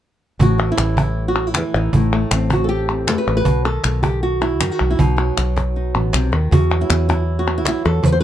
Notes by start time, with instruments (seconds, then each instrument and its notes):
0.39 fingered electric bass A1, nylon-string guitar A2 F#4, cajon bass
0.58 nylon-string guitar E3, cajon slap
0.72 nylon-string guitar E4
0.78 fingered electric bass A1, nylon-string guitar G3, cajon slap, clap
0.97 nylon-string guitar E4, cajon bass
1.28 nylon-string guitar F#4
1.47 nylon-string guitar E4
1.54 fingered electric bass E2, nylon-string guitar E3 E4, cajon slap, clap
1.74 fingered electric bass A1, nylon-string guitar D#4
1.93 fingered electric bass A1, nylon-string guitar A2 E4, cajon bass
2.13 nylon-string guitar A3
2.31 fingered electric bass A1, nylon-string guitar C4, cajon slap, clap
2.50 nylon-string guitar F#4, cajon bass
2.64 nylon-string guitar A4
2.69 nylon-string guitar G4
2.90 nylon-string guitar C4
3.07 fingered electric bass E2, nylon-string guitar A3 A4, cajon bass, cajon slap, clap
3.18 nylon-string guitar B4
3.27 fingered electric bass A1
3.37 nylon-string guitar B4
3.45 fingered electric bass B1, nylon-string guitar B2, cajon bass
3.65 nylon-string guitar D#3 A4
3.84 fingered electric bass B1, nylon-string guitar B3, cajon slap, clap
4.03 nylon-string guitar G4, cajon bass
4.23 nylon-string guitar F#4
4.41 nylon-string guitar E4
4.61 fingered electric bass F#2, nylon-string guitar D#3 D#4, cajon bass, cajon slap, clap
4.71 nylon-string guitar F#4
4.81 fingered electric bass B1
4.91 nylon-string guitar E4
4.99 fingered electric bass B1, nylon-string guitar B2 D#4, cajon bass
5.17 nylon-string guitar F#3
5.37 fingered electric bass B1, nylon-string guitar B3, cajon slap, clap
5.57 cajon bass, cajon slap
5.76 nylon-string guitar D#4
5.95 fingered electric bass A1, nylon-string guitar B3
6.13 fingered electric bass B1, nylon-string guitar C3, cajon slap, clap
6.32 fingered electric bass D#2, nylon-string guitar D#3
6.51 nylon-string guitar E2 F#4, fingered electric bass E2, cajon bass
6.70 nylon-string guitar F#3
6.81 nylon-string guitar E4
6.90 fingered electric bass E2, nylon-string guitar B3, cajon slap, clap
7.09 nylon-string guitar E4, cajon bass, cajon slap
7.39 nylon-string guitar F#4
7.47 nylon-string guitar B3
7.58 nylon-string guitar E4
7.65 fingered electric bass B1, nylon-string guitar F#3 E4, cajon slap, clap
7.85 fingered electric bass E2, nylon-string guitar A4
8.03 nylon-string guitar E2 B4, fingered electric bass E2, cajon bass
8.12 nylon-string guitar C5
8.20 nylon-string guitar B4